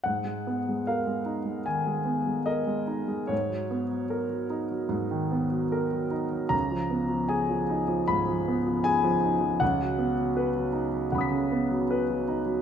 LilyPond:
<<
  \new Staff \with { instrumentName = "Grand piano" } { \time 4/4 \key gis \dorian \tempo 4 = 76 << { r1 | r1 | r1 | r2 <fis'' b'' dis''' b'''>2 | } \\ { fis''4 eis''4 gis''4 dis''4 | cis''2.~ cis''8 r8 | ais''4 gis''4 b''4 gis''4 | fis''2.~ fis''8 r8 | } >> }
  \new Staff \with { instrumentName = "Grand piano" } { \clef bass \time 4/4 \key gis \dorian gis,16 gis16 b16 gis16 ais'16 gis16 dis'16 gis16 dis16 gis16 b16 gis16 ais'16 gis16 dis'16 gis16 | gis,16 fis16 b16 fis16 ais'16 fis16 dis'16 fis16 gis,16 dis16 b16 fis16 ais'16 fis16 dis'16 fis16 | cis,16 eis16 b16 eis16 gis'16 eis16 dis'16 eis16 gis,16 eis16 b16 eis16 gis'16 eis16 dis'16 eis16 | cis,16 fis16 b16 fis16 b'16 fis16 dis'16 fis16 cis,16 cis16 b16 fis16 b'16 fis16 dis'16 fis16 | }
>>